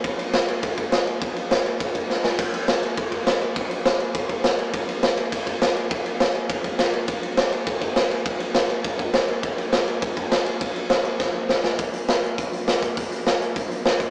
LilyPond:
\new DrumStaff \with { instrumentName = "Drums" } \drummode { \time 4/4 \tempo 4 = 204 <bd cymr>8 cymr8 <cymr sn>8 cymr8 <bd cymr>8 <bd cymr>8 <cymr sn>8 cymr8 | <bd cymr>8 cymr8 <cymr sn>8 cymr8 <bd cymr>8 <bd cymr>8 sn8 sn8 | <cymc bd cymr>8 cymr8 <cymr sn>8 cymr8 <bd cymr>8 <bd cymr>8 <cymr sn>8 cymr8 | <bd cymr>8 cymr8 <cymr sn>8 cymr8 <bd cymr>8 <bd cymr>8 <cymr sn>8 cymr8 |
<bd cymr>8 cymr8 <cymr sn>8 cymr8 <bd cymr>8 <bd cymr>8 <cymr sn>8 cymr8 | <bd cymr>8 cymr8 <cymr sn>8 cymr8 <bd cymr>8 <bd cymr>8 <cymr sn>8 cymr8 | <bd cymr>8 cymr8 <cymr sn>8 cymr8 <bd cymr>8 <bd cymr>8 <cymr sn>8 cymr8 | <bd cymr>8 cymr8 <cymr sn>8 cymr8 <bd cymr>8 <bd cymr>8 <cymr sn>8 cymr8 |
<bd cymr>8 cymr8 <cymr sn>8 cymr8 <bd cymr>8 <bd cymr>8 <cymr sn>8 cymr8 | <bd cymr>8 cymr8 <cymr sn>8 cymr8 <bd sn>4 sn8 sn8 | <hh bd>8 hh8 <hh sn>8 hh8 <hh bd>8 hh8 <hh sn>8 <hh bd>8 | <hh bd>8 hh8 <hh sn>8 hh8 <hh bd>8 hh8 <hh sn>8 <hh bd>8 | }